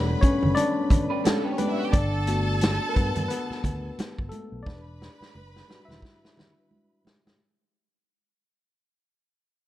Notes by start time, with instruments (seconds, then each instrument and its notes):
Already playing: fingered electric bass E1, tine electric piano G3 A3 D4 A4 C#5 D5 F#5, violin section B4 B5
0.21 tine electric piano C#4 C#5, kick, closed hi-hat, muted conga
0.43 fingered electric bass F#1, low conga
0.55 tine electric piano D4 D5, closed hi-hat, muted conga
0.90 kick, closed hi-hat, muted conga, low conga
1.10 clean electric guitar D4 B4
1.24 clean electric guitar C#4 A4, snare, closed hi-hat, high conga
1.36 violin section A3 A4
1.45 clean electric guitar B3 G4, violin section B3 B4
1.52 violin section C#4 C#5
1.58 tine electric piano B3 B4, violin section D4 D5, closed hi-hat, high conga
1.71 violin section E4 E5
1.80 violin section F#4 F#5
1.87 violin section G4 G5
1.93 fingered electric bass G1, tine electric piano D4 D5, violin section A4 A5, kick, closed hi-hat, muted conga
2.27 tine electric piano A3 B3 F#4, closed hi-hat
2.61 snare, closed hi-hat, high conga
2.89 tine electric piano A#4
2.94 fingered electric bass G2, tine electric piano B3 B4, kick, closed hi-hat, muted conga
3.15 fingered electric bass G2, closed hi-hat, low conga
3.28 tine electric piano B3 B4, closed hi-hat, muted conga
3.50 muted fingered electric bass stroke, snare
3.64 fingered electric bass D2, kick, closed hi-hat, muted conga, low conga
3.98 muted fingered electric bass stroke, snare, closed hi-hat, high conga
4.19 fingered electric bass G1, kick
4.29 tine electric piano A4, closed hi-hat, high conga
4.33 tine electric piano A3
4.52 fingered electric bass B1
4.63 tine electric piano D5, kick
4.67 fingered electric bass E1, tine electric piano D4, violin section B4 B5, snare, muted conga
5.02 snare
5.21 muted fingered electric bass stroke, snare
5.35 fingered electric bass F#1, high conga
5.56 snare
5.68 tine electric piano G3 D4 F#4, snare
5.85 fingered electric bass E1, tine electric piano E4 E5
5.89 snare, low conga
6.02 kick, snare, muted conga
6.25 snare
6.37 snare, muted conga, low conga
6.71 high conga
7.05 snare, high conga
7.25 snare, high conga